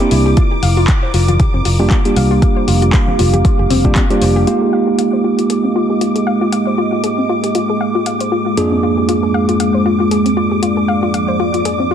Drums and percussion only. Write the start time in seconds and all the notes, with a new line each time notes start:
0.00 closed hi-hat
0.11 open hi-hat
0.37 kick, closed hi-hat
0.63 open hi-hat
0.88 kick, clap, closed hi-hat
1.14 open hi-hat
1.28 closed hi-hat, high conga
1.39 kick, closed hi-hat, low conga
1.65 open hi-hat
1.90 kick, clap, closed hi-hat
2.05 closed hi-hat
2.16 open hi-hat, high conga, low conga
2.42 kick, closed hi-hat
2.68 open hi-hat
2.82 closed hi-hat
2.93 kick, clap, closed hi-hat
3.07 high conga
3.19 open hi-hat, low conga
3.32 closed hi-hat, high conga
3.45 kick, closed hi-hat
3.70 open hi-hat, low conga
3.85 kick
3.96 kick, clap, closed hi-hat
4.10 closed hi-hat
4.22 open hi-hat
4.47 closed hi-hat
4.99 closed hi-hat
5.39 closed hi-hat
5.50 closed hi-hat
6.01 closed hi-hat
6.16 closed hi-hat
6.52 closed hi-hat
7.04 closed hi-hat
7.44 closed hi-hat
7.55 closed hi-hat
8.06 closed hi-hat
8.20 closed hi-hat
8.57 closed hi-hat
9.09 closed hi-hat
9.49 closed hi-hat
9.60 closed hi-hat
10.11 closed hi-hat
10.26 closed hi-hat
10.63 closed hi-hat
11.14 closed hi-hat
11.54 closed hi-hat
11.65 closed hi-hat